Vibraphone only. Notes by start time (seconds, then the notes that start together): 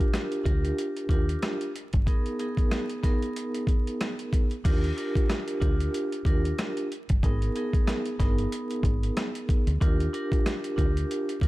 Already playing: D4 F4 G4 A#4
0.44 D4 F4 G4 A#4
1.10 D4 F4 G4 A#4
2.06 B3 D#4 G#4 A#4
2.39 B3 D#4 G#4 A#4
3.03 B3 D#4 G#4 A#4
4.64 D4 F4 G4 A#4
4.97 D4 F4 G4 A#4
5.60 D4 F4 G4 A#4
6.26 D4 F4 G4 A#4
7.23 B3 D#4 G#4 A#4
7.56 B3 D#4 G#4 A#4
8.19 B3 D#4 G#4 A#4
9.81 D4 F4 G4 A#4
10.13 D4 F4 G4 A#4
10.76 D4 F4 G4 A#4
11.42 D4 F4 G4 A#4